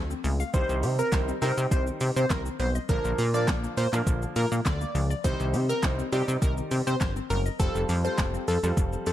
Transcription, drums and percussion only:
0.10 shaker medium
0.24 open hi-hat medium
0.24 shaker medium
0.40 shaker medium
0.54 kick loud
0.54 closed hi-hat medium
0.54 shaker medium
0.70 shaker medium
0.83 open hi-hat medium
0.83 shaker medium
0.99 shaker medium
1.12 kick loud
1.12 snare medium
1.12 clap loud
1.12 closed hi-hat medium
1.12 shaker medium
1.28 shaker medium
1.42 open hi-hat medium
1.42 shaker medium
1.58 shaker medium
1.71 kick loud
1.71 closed hi-hat medium
1.71 shaker medium
1.87 shaker medium
2.01 open hi-hat medium
2.01 shaker medium
2.17 shaker medium
2.30 kick loud
2.30 snare medium
2.30 clap loud
2.30 closed hi-hat medium
2.30 shaker medium
2.46 shaker medium
2.60 open hi-hat medium
2.60 shaker soft
2.75 shaker medium
2.89 kick loud
2.89 closed hi-hat medium
2.89 shaker medium
3.05 shaker medium
3.18 open hi-hat medium
3.18 shaker medium
3.34 shaker medium
3.48 kick loud
3.48 snare loud
3.48 clap loud
3.48 closed hi-hat medium
3.48 shaker medium
3.64 shaker medium
3.77 open hi-hat medium
3.77 shaker medium
3.93 clap medium
3.93 shaker medium
4.07 kick loud
4.07 closed hi-hat medium
4.07 shaker medium
4.22 shaker soft
4.36 open hi-hat medium
4.36 shaker medium
4.52 shaker medium
4.66 kick loud
4.66 snare medium
4.66 clap loud
4.66 closed hi-hat medium
4.66 shaker medium
4.81 shaker medium
4.95 open hi-hat medium
4.95 shaker soft
5.11 shaker medium
5.24 kick loud
5.24 closed hi-hat medium
5.24 shaker medium
5.40 shaker medium
5.54 open hi-hat medium
5.54 shaker medium
5.70 shaker medium
5.83 kick loud
5.83 snare medium
5.83 clap loud
5.83 closed hi-hat medium
5.83 shaker medium
5.99 shaker medium
6.13 open hi-hat medium
6.13 shaker medium
6.28 shaker medium
6.42 kick loud
6.42 closed hi-hat medium
6.42 shaker medium
6.58 shaker soft
6.71 open hi-hat medium
6.71 shaker medium
6.87 shaker medium
7.01 kick loud
7.01 snare loud
7.01 clap loud
7.01 closed hi-hat medium
7.01 shaker medium
7.16 shaker medium
7.30 open hi-hat medium
7.30 shaker medium
7.46 shaker medium
7.60 kick loud
7.60 closed hi-hat medium
7.60 shaker medium
7.75 shaker medium
7.89 open hi-hat medium
7.89 shaker medium
8.05 shaker medium
8.18 kick loud
8.18 snare loud
8.18 clap loud
8.18 closed hi-hat medium
8.18 shaker medium
8.34 shaker soft
8.48 open hi-hat medium
8.48 shaker medium
8.64 shaker medium
8.77 kick loud
8.77 closed hi-hat medium
8.77 shaker medium
8.93 shaker soft
9.06 open hi-hat medium
9.06 shaker medium

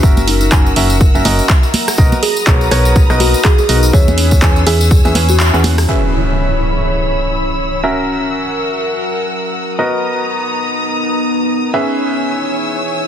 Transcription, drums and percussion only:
0.03 kick loud
0.03 tambourine medium
0.17 tambourine soft
0.17 high conga medium
0.28 open hi-hat loud
0.41 tambourine medium
0.51 kick loud
0.51 clap loud
0.51 tambourine medium
0.66 tambourine soft
0.76 open hi-hat loud
0.90 tambourine medium
1.01 kick loud
1.01 tambourine medium
1.15 tambourine soft
1.25 open hi-hat loud
1.25 high conga medium
1.39 tambourine medium
1.49 kick loud
1.49 clap loud
1.49 tambourine medium
1.63 tambourine soft
1.74 open hi-hat loud
1.74 high conga medium
1.88 cross-stick medium
1.88 open hi-hat medium
1.88 tambourine medium
1.98 kick loud
1.98 tambourine medium
2.12 tambourine soft
2.12 high conga medium
2.23 open hi-hat loud
2.37 tambourine medium
2.47 kick loud
2.47 clap loud
2.47 tambourine medium
2.61 tambourine soft
2.71 cross-stick medium
2.71 open hi-hat loud
2.85 tambourine medium
2.96 kick loud
2.96 tambourine medium
3.10 cross-stick medium
3.10 tambourine soft
3.20 open hi-hat loud
3.20 high conga medium
3.34 tambourine medium
3.45 kick loud
3.45 clap loud
3.45 tambourine medium
3.58 tambourine soft
3.69 open hi-hat loud
3.83 tambourine medium
3.93 kick loud
3.93 tambourine medium
4.08 tambourine soft
4.08 high conga medium
4.18 open hi-hat loud
4.31 kick medium
4.31 tambourine medium
4.42 kick loud
4.42 clap loud
4.42 tambourine medium
4.56 tambourine soft
4.67 open hi-hat loud
4.81 tambourine medium
4.91 kick loud
4.91 tambourine medium
5.05 tambourine soft
5.05 high conga medium
5.15 open hi-hat loud
5.15 high conga medium
5.29 tambourine medium
5.40 clap loud
5.40 tambourine medium
5.54 tambourine soft
5.64 open hi-hat loud
5.64 high conga loud
5.78 cross-stick medium
5.78 open hi-hat medium
5.78 tambourine medium

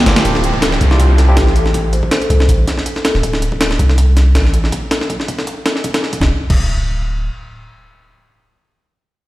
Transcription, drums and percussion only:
0.06 snare loud
0.06 closed hi-hat medium
0.16 snare loud
0.16 closed hi-hat medium
0.25 kick loud
0.25 closed hi-hat medium
0.35 snare medium
0.44 closed hi-hat medium
0.54 kick medium
0.62 snare loud
0.62 closed hi-hat medium
0.72 snare medium
0.81 kick loud
0.81 closed hi-hat medium
0.91 snare soft
1.00 closed hi-hat medium
1.18 snare medium
1.18 closed hi-hat medium
1.37 snare loud
1.37 closed hi-hat medium
1.47 snare soft
1.56 closed hi-hat medium
1.66 snare soft
1.74 kick loud
1.74 closed hi-hat medium
1.93 closed hi-hat medium
2.03 kick medium
2.11 snare loud
2.11 closed hi-hat medium
2.21 closed hi-hat soft
2.30 kick loud
2.30 closed hi-hat medium
2.40 snare medium
2.49 closed hi-hat medium
2.67 snare soft
2.67 closed hi-hat medium
2.78 snare soft
2.86 closed hi-hat medium
2.96 snare soft
3.05 snare loud
3.05 closed hi-hat medium
3.15 snare soft
3.23 kick loud
3.23 closed hi-hat medium
3.33 snare soft
3.42 closed hi-hat medium
3.52 kick medium
3.61 snare loud
3.61 closed hi-hat medium
3.71 snare medium
3.79 kick medium
3.79 closed hi-hat medium
3.89 snare soft
3.98 closed hi-hat medium
4.17 snare medium
4.17 closed hi-hat medium
4.35 snare loud
4.35 closed hi-hat medium
4.45 snare soft
4.54 closed hi-hat medium
4.64 snare soft
4.72 kick loud
4.72 closed hi-hat medium
4.91 snare loud
4.91 closed hi-hat medium
5.01 snare medium
5.10 kick medium
5.10 closed hi-hat medium
5.20 snare soft
5.28 kick loud
5.28 closed hi-hat medium
5.38 snare medium
5.47 closed hi-hat medium
5.66 snare loud
5.66 closed hi-hat medium
5.76 snare soft
5.84 kick medium
5.84 closed hi-hat medium
5.94 snare loud
5.94 closed hi-hat medium
6.03 snare soft
6.13 kick loud
6.13 closed hi-hat medium
6.21 kick loud
6.21 snare medium
6.50 kick loud
6.50 crash medium

